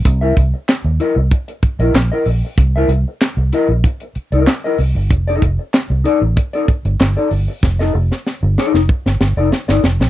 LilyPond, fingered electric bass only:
\new Staff \with { instrumentName = "Fingered electric bass" } { \clef bass \time 4/4 \key f \major \tempo 4 = 95 c,8 c,16 r8 dis,16 r16 c,16 r8. bes,,16 bes,,16 r16 bes,,16 r16 | c,8 c,16 r8 c,16 r16 bes,,16 r8. c,16 r8 c,16 g,,16 | f,,8 f,,16 r8 c,16 r16 a,,16 r8. g,,16 g,,16 r16 g,,16 r16 | f,,8 f,,16 r8 g,,16 r16 f,,16 r16 g,,16 g,,16 f,,16 r16 g,,16 f,,16 bes,,16 | }